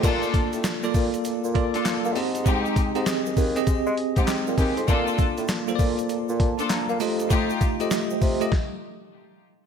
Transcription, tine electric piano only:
0.03 A#3 F4 A4 D5
0.83 A#3 F4 A4 D5
1.55 A#3 F4 A4 D5
2.15 C4 G4 G#4 D#5
2.95 C4 G4 G#4 D#5
3.56 C4 G4 G#4 D#5
4.28 G5
4.58 G#5
4.77 C6
4.88 A#3 F4 A4 D5
5.68 A#3 F4 A4 C5
5.75 D5
6.40 A5
6.70 A#5
6.89 F5
7.00 A3 F4 G4 D#5
7.80 A3 F4 G4 D#5
8.41 A3 F4 G4 D#5

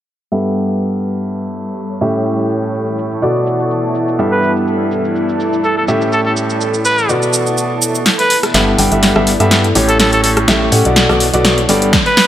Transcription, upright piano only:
0.32 G2 B3 G4 A4 E5
2.01 A2 C#4 G4 A4 E5
3.22 B2 B3 F#4 A4 D5
4.19 G2 B3 G4 A4 E5
5.88 A2 C#4 G4 A4 E5
7.09 B2 B3 F#4 A4 D5
8.54 G2 B3 G4 A4 E5
8.79 G2 B3 G4 A4 G5
8.92 G2 B3 G4 A4 E5
9.16 G2 B3 G4 A4 E5
9.40 G2 B3 G4 A4 E5
9.75 A2 C#4 G4 A4 C#5
10.48 A2 C#4 G4 A4 E5
10.72 C#4 G4 A4 F#5
10.85 B2 B3 F#4 A4 D5
11.09 B2 B3 F#4 A4 D5
11.34 B2 B3 F#4 A4 D5
11.69 G2 B3 G4 A4 D5

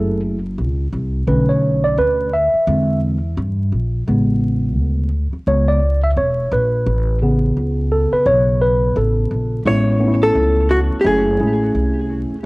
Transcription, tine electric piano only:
Already playing: A3 E4 G#4 A4
1.27 D3 A3 C#4 B4
1.49 C#5
1.84 D5
1.98 B4
2.33 E5
2.68 D3 G#3 C4
4.07 C#3 G#3 B3
5.47 C#3 G#3 B3 C#5
5.68 D5
6.04 E5
6.17 C#5
6.53 B4
7.22 C#3 B3 G#4
7.92 A4
8.13 B4
8.27 C#5
8.62 B4
8.97 A4
9.65 G#3 B3 C#4 E4
9.99 A3 B3 C#4 D#4
10.08 E4
11.04 A3 C#4 E4 G#4
11.39 G#3 C#4 E4 G#4
11.46 A3

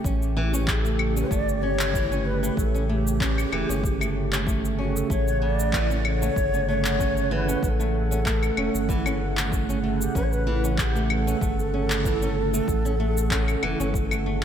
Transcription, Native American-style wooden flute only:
0.68 G#4
0.79 A4
1.30 D5
1.62 C#5
2.25 B4
2.57 A4
2.88 A4
2.93 G4
4.79 F#4
4.96 A4
5.11 C#5
5.43 D5
6.05 C#5
6.69 C#5
7.32 B4
7.63 B4
7.68 A4
9.84 E4
10.01 G4
10.15 B4
10.23 C#5
10.31 B4
10.79 G4 A4
11.11 A4

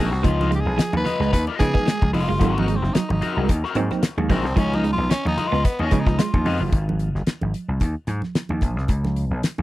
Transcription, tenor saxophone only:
0.06 F#4
0.24 F4
0.55 G4
0.60 G#4
0.97 B4
1.33 B4
1.59 G#4
2.13 F4
2.58 D#4
2.76 C4
2.94 D#4
3.12 D#4
4.31 C4
4.58 C#4
4.75 D#4
4.93 F4
5.11 C#4
5.28 D#4
5.47 F4
5.65 B3
5.82 C#4
6.00 D#4
6.18 F4

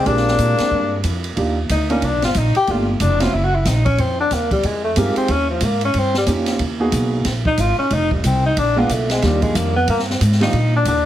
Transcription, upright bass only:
0.06 A#1
0.38 A#2
0.59 muted upright bass stroke
0.71 G2
1.04 F2
1.37 D#2
1.69 D2
2.02 C2
2.13 A#1
2.24 G1
2.35 A#1
2.55 muted upright bass stroke
2.68 G1
3.00 F1
3.33 F#1
3.65 A#1
3.98 F2
4.31 D#2
4.63 F2
4.96 G2
5.16 muted upright bass stroke
5.29 D#2
5.61 G#2
5.94 G2
6.27 F2
6.59 D#2
6.92 B1
7.25 A#1
7.58 G#1
7.78 muted upright bass stroke
7.91 F1
8.24 C2
8.57 A#1
8.89 B1
9.22 D#2
9.55 F2
9.88 G2
10.20 G#2
10.53 A#2
10.85 D#2

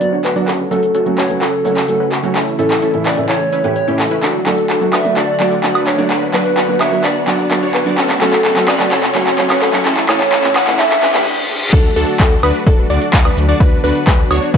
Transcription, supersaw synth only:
0.13 D4 F#4 C#5
0.36 D4 F#4 D5
0.48 C#4 F#4 A4
0.71 C#4 F#4 A4
0.95 C#4 F#4 A4
1.18 C#4 F#4 B4
1.42 C#4 F#4 A4
1.65 C#4 F#4 C#5
2.00 C#4 F#4 B4
2.24 C#4 F#4 C#5
2.35 C#4 E4 A4
2.59 C#4 E4 A4
2.82 C#4 E4 A4
3.06 C#4 E4 B4
3.29 C#4 E4 A4
3.53 C#4 E4 B4
3.64 C#4 E4 B4
3.88 C#4 E4 G4
4.11 C#4 E4 B4
4.23 D4 F#4 A4
4.46 D4 F#4 A4
4.70 D4 F#4 A4
4.93 D4 F#4 B4
5.17 D4 F#4 A4
5.40 D4 F#4 D5
5.75 D4 F#4 B4
5.99 D4 F#4 D5
6.10 D4 F#4 B4
6.34 D4 F#4 B4
6.57 D4 F#4 B4
6.81 D4 F#4 C#5
7.04 D4 F#4 B4
7.28 D4 F#4 D5
7.63 D4 F#4 C#5
7.86 D4 F#4 D5
7.98 C#4 F#4 A4
8.21 C#4 F#4 A4
8.45 C#4 F#4 A4
8.68 C#4 F#4 B4
8.92 C#4 F#4 A4
9.15 C#4 F#4 C#5
9.50 C#4 F#4 B4
9.74 C#4 F#4 C#5
9.85 C#4 E4 A4
10.09 C#4 E4 A4
10.32 C#4 E4 A4
10.56 C#4 E4 B4
10.79 C#4 E4 A4
11.03 C#4 E4 B4
11.14 C#4 E4 B4
11.73 D4 F#4 A4
11.96 D4 F#4 A4
12.20 D4 F#4
12.43 D4 F#4 B4
12.67 D4 F#4 A4
12.90 D4 F#4 D5
13.25 D4 F#4 B4
13.49 D4 F#4 D5
13.60 D4 F#4 B4
13.84 D4 F#4 B4
14.07 D4 F#4 B4
14.31 D4 F#4 C#5
14.54 D4 F#4 B4

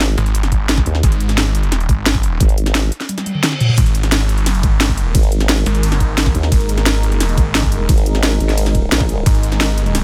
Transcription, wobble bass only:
Already playing: G#1
0.86 D#2
2.41 G#1
5.15 G#1
6.35 D#2
7.89 G#1
8.40 G#1
8.92 A#1

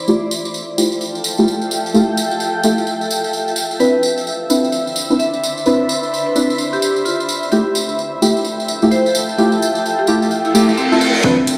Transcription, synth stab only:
0.08 A3 E4 F4 G4
0.78 A3 E4 F4 G4
1.38 A3 E4 F4 G4
1.94 A3 E4 F4 G4
2.64 A3 E4 F4 G4
3.80 C4 D4 E4 B4
4.50 C4 D4 E4 B4
5.10 C4 D4 E4 B4
5.66 C4 D4 E4 B4
6.36 C4 D4 E4 B4
7.52 A3 E4 F4 G4
8.22 A3 E4 F4 G4
8.82 A3 E4 F4 G4
9.38 A3 E4 F4 G4
10.08 A3 E4 F4 G4
10.54 A3 E4 F4 G4
10.68 A3 E4 F4 G4
10.92 A3 E4 F4 A4
11.24 C4 D4 E4 B4

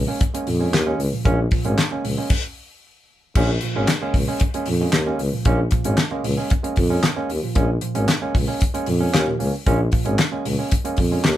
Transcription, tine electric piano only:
0.07 G#3 A#3 C#4
0.34 G#3 A#3 C#4
0.48 A#2 F3
0.59 G#3 A#3 C#4
0.86 G#3 A#3 C#4
1.12 A#2 F3
1.25 G#3 A#3 C#4
1.52 A#2 F3
1.65 G#3 A#3 C#4
1.91 G#3 A#3 C#4
2.04 A#2 F3
2.17 G#3 A#3 C#4
3.36 G#3 A#3 C#4
3.63 A#2 F3
3.76 G#3 A#3 C#4
4.01 G#3 A#3 C#4
4.15 A#2 F3
4.28 G#3 A#3 C#4
4.54 G#3 A#3 C#4
4.68 A#2 F3
4.81 G#3 A#3 C#4
5.06 G#3 A#3 C#4
5.32 A#2 F3
5.46 G#3 A#3 C#4
5.72 A#2 F3
5.85 G#3 A#3 C#4
6.11 G#3 A#3 C#4
6.24 A#2 F3
6.37 G#3 A#3 C#4
6.63 G#3 A#3 C#4
6.78 A#2 F3
6.90 G#3 A#3 C#4
7.16 G#3 A#3 C#4
7.43 A#2 F3
7.55 G#3 A#3 C#4
7.82 A#2 F3
7.95 G#3 A#3 C#4
8.22 G#3 A#3 C#4
8.35 A#2 F3
8.47 G#3 A#3 C#4
8.74 G#3 A#3 C#4
8.87 A#2 F3
9.00 G#3 A#3 C#4
9.13 A#3 C#4
9.27 A#2 F3
9.39 A#3 C#4
9.66 G#3 A#3 C#4
9.93 A#2 F3
10.05 G#3 A#3 C#4
10.32 G#3 A#3 C#4
10.45 A#2 F3
10.58 G#3 A#3 C#4
10.85 G#3 A#3 C#4
10.99 A#2 F3
11.11 G#3 A#3 C#4

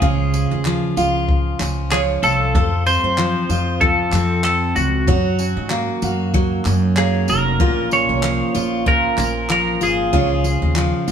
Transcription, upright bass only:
0.02 C#2
0.51 D#2
0.97 C#2
1.60 C#2
2.23 C2
2.55 F2
3.03 F#2
3.49 F2
4.12 F2
4.76 C#2
5.07 F#2
5.57 G#2
6.02 F#2
6.66 F#2
7.28 F1
7.60 A#1
8.09 C2
8.55 A#1
9.18 A#1
9.81 G#1
10.13 C#2
10.62 D#2
11.08 C#2

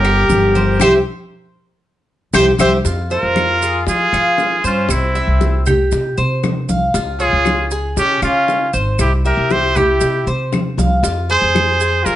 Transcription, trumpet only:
Already playing: G4
0.80 G4
2.34 G4
2.60 G4
3.12 F4
3.87 F4
4.65 C#4
4.91 C4
7.20 F4
7.98 C#4
8.23 C#4
9.01 E4
9.26 G4
9.52 G4
9.78 E4
11.30 G#4
12.03 F4

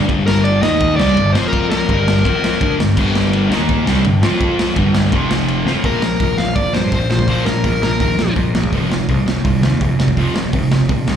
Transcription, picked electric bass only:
0.09 G1
0.62 D#2
0.97 C2
1.16 G1
1.34 F2
1.89 G1
2.25 F2
2.61 D2
2.79 G1
2.97 G1
3.50 D#2
3.86 C2
4.04 G1
4.22 F2
4.76 G1
5.12 F1
5.66 F2
5.84 A#1
6.20 F1
6.37 A#1
6.56 F2
6.73 G2
6.92 A#1
7.09 A#1
7.27 A#1
7.46 A#1
7.64 A#1
7.81 A#1
8.00 D#2
8.18 F2
8.36 F2
8.54 A#1
8.72 F1
9.09 C2
9.26 F1
9.45 C2
9.62 D#2
9.81 F1
9.98 F1
10.17 F1
10.35 F1
10.53 F1
10.71 F1
10.89 A#1
11.07 C2

